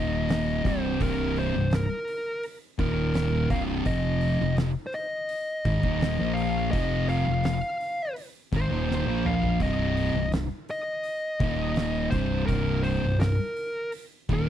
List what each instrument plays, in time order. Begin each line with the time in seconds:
Already playing: fingered electric bass D#1, distorted electric guitar D#2 A#2 D#3, lead electric guitar D#5
0.29 snare, open hi-hat
0.64 fingered electric bass C1, distorted electric guitar C2 G2 C3, lead electric guitar C5, kick, open hi-hat
1.01 fingered electric bass C1, distorted electric guitar C2 G2 C3, lead electric guitar A#4, kick, open hi-hat
1.36 lead electric guitar C5, open hi-hat
1.55 fingered electric bass C1, distorted electric guitar C2 G2
1.71 snare, open hi-hat
1.75 lead electric guitar A#4
2.08 open hi-hat
2.43 open hi-hat
2.78 fingered electric bass D#1, distorted electric guitar D#2 A#2 D#3, lead electric guitar A#4, kick, open hi-hat
3.14 snare, open hi-hat
3.50 fingered electric bass C1, distorted electric guitar C2 G2 C3, lead electric guitar F5, kick, open hi-hat
3.85 fingered electric bass F1, distorted electric guitar F2 C3 F3, lead electric guitar D#5, kick, open hi-hat
4.21 open hi-hat
4.41 fingered electric bass F1, distorted electric guitar F2 C3
4.57 snare, open hi-hat
4.87 lead electric guitar C5
4.93 lead electric guitar D#5, open hi-hat
5.29 open hi-hat
5.65 fingered electric bass G#1, distorted electric guitar G#2 D#3, kick, open hi-hat
5.83 fingered electric bass D#1, distorted electric guitar D#2 A#2 D#3, kick
6.01 snare, open hi-hat
6.18 fingered electric bass A#1, distorted electric guitar A#2 F3 A#3
6.34 lead electric guitar F5, open hi-hat
6.71 fingered electric bass F1, distorted electric guitar F2 C3 F3, lead electric guitar D#5, kick, open hi-hat
7.09 lead electric guitar F5, open hi-hat
7.25 fingered electric bass F1, distorted electric guitar F2 C3
7.44 lead electric guitar F5, snare, open hi-hat
7.80 open hi-hat
8.16 open hi-hat
8.52 fingered electric bass G#1, distorted electric guitar G#2 D#3, kick, open hi-hat
8.56 lead electric guitar C5
8.70 fingered electric bass D#1, distorted electric guitar D#2 A#2 D#3
8.91 snare
9.06 fingered electric bass A#1, distorted electric guitar A#2 F3 A#3
9.25 lead electric guitar F5, mid tom
9.43 floor tom
9.60 fingered electric bass C1, distorted electric guitar C2 G2 C3, lead electric guitar D#5, kick, open hi-hat
9.97 open hi-hat
10.13 fingered electric bass C1, distorted electric guitar C2 G2
10.32 snare, open hi-hat
10.69 lead electric guitar D#5, open hi-hat
11.03 open hi-hat
11.40 fingered electric bass D#1, distorted electric guitar D#2 A#2 D#3, kick, open hi-hat
11.76 snare, open hi-hat
12.10 fingered electric bass C1, distorted electric guitar C2 G2 C3, lead electric guitar C5, kick, open hi-hat
12.46 fingered electric bass C1, distorted electric guitar C2 G2 C3, lead electric guitar A#4, kick, open hi-hat
12.84 lead electric guitar C5, open hi-hat
13.03 fingered electric bass C1, distorted electric guitar C2 G2
13.20 lead electric guitar A#4, snare, open hi-hat
13.57 open hi-hat
13.92 open hi-hat
14.29 fingered electric bass D#1, distorted electric guitar D#2 A#2 D#3, lead electric guitar A#4, kick, open hi-hat